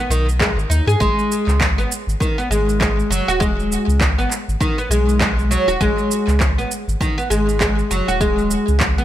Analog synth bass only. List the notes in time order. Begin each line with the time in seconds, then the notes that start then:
0.10 B1
0.57 G#1
0.70 D#2
0.87 G#2
1.01 G#1
1.47 C#2
1.77 G#1
2.07 G#1
2.50 G#1
3.10 F#1
3.28 D#1
3.88 C#2
4.18 G#1
4.48 G#1
4.90 B1
5.68 D#1
5.81 G#1
6.28 C#2
6.57 G#1
6.88 G#1
7.30 G#1
7.91 F#1
8.08 D#1
8.68 C#2
8.99 G#1